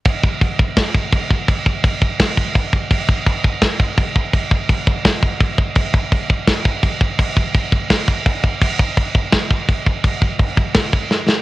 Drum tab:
CC |x-x-x-x-x-x-x-x-|x-x-x-x-x-x-x-x-|x-x-x-x-x-x-x-x-|x-x-x-x-x-x-x---|
SD |----o-------o---|----o-------o---|----o-------o---|----o-------o-oo|
BD |oooooooooooooooo|oooooooooooooooo|oooooooooooooooo|oooooooooooooo--|